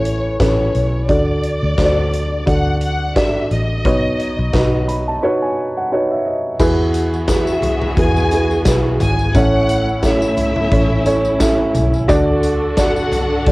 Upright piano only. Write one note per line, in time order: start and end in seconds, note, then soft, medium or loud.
0.00 1.11 A2 medium
0.00 0.40 C#4 medium
0.00 0.40 E4 medium
0.00 0.40 A4 medium
0.00 0.40 B4 medium
0.00 1.11 C#5 medium
0.40 0.99 C#4 medium
0.40 0.99 E4 soft
0.40 0.99 A4 medium
0.40 0.99 B4 medium
1.08 2.08 D3 medium
1.08 1.68 D4 medium
1.08 1.68 F#4 medium
1.08 1.68 A4 medium
1.08 1.68 D5 medium
1.78 2.37 D4 medium
1.78 2.37 F#4 medium
1.78 2.37 A4 soft
1.78 1.86 C5 medium
1.85 2.40 D5 medium
2.46 3.05 D4 medium
2.46 3.05 F#4 medium
2.46 3.05 A4 medium
2.46 3.05 D5 medium
3.15 3.74 D4 medium
3.15 3.75 F#4 medium
3.15 3.75 A4 soft
3.15 3.75 D5 medium
3.85 4.84 B2 medium
3.85 4.43 D#4 medium
3.85 4.43 F#4 medium
3.85 4.43 B4 medium
3.85 4.44 C#5 medium
4.53 5.12 D#4 medium
4.53 5.12 F#4 medium
4.53 5.12 B4 medium
4.53 5.12 D#5 medium
4.88 5.06 B5 medium
5.08 5.22 A5 medium
5.22 5.81 D#4 medium
5.22 5.81 F#4 medium
5.22 5.81 B4 medium
5.22 5.81 C#5 medium
5.22 5.40 B5 medium
5.42 5.74 G#5 medium
5.77 5.91 F#5 medium
5.92 6.50 D#4 medium
5.92 6.50 F#4 medium
5.92 6.50 B4 medium
5.92 6.50 C#5 medium
5.92 6.10 F#5 medium
6.10 6.24 E5 medium
6.26 6.58 D#5 medium
6.60 7.59 E3 medium
6.60 7.18 E4 medium
6.60 7.19 F#4 medium
6.60 7.18 G#4 loud
6.60 7.19 B4 loud
7.28 7.87 E4 medium
7.28 7.87 F#4 medium
7.28 7.87 G#4 medium
7.28 7.87 B4 medium
7.97 8.27 E4 medium
7.97 8.27 F#4 medium
7.97 8.27 G#4 soft
7.97 8.27 B4 medium
8.32 8.61 E4 medium
8.32 8.61 F#4 soft
8.32 8.61 G#4 medium
8.32 8.62 B4 medium
8.67 9.25 E4 medium
8.67 9.25 F#4 soft
8.67 9.25 G#4 medium
8.67 9.25 B4 medium
9.35 10.34 A2 medium
9.35 9.93 C#4 medium
9.35 9.94 E4 medium
9.35 9.93 A4 medium
9.35 9.94 C#5 loud
10.03 10.62 C#4 medium
10.03 10.62 E4 medium
10.03 10.62 A4 medium
10.03 10.62 C#5 medium
10.72 11.01 C#4 medium
10.72 11.01 E4 soft
10.72 11.01 A4 medium
10.72 11.01 C#5 medium
11.06 11.35 C#4 medium
11.06 11.36 E4 medium
11.06 11.35 A4 medium
11.06 11.36 C#5 medium
11.40 11.99 C#4 medium
11.40 11.99 E4 medium
11.40 11.99 A4 medium
11.40 11.99 E5 medium
12.08 13.08 D3 medium
12.08 12.68 D4 loud
12.08 12.67 F#4 loud
12.08 12.67 A4 loud
12.08 12.68 D5 loud
12.77 13.36 D4 medium
12.77 13.36 F#4 medium
12.77 13.36 A4 medium
12.77 13.36 D5 medium
13.46 13.52 D4 medium
13.46 13.52 F#4 medium
13.46 13.52 A4 medium
13.46 13.52 D5 medium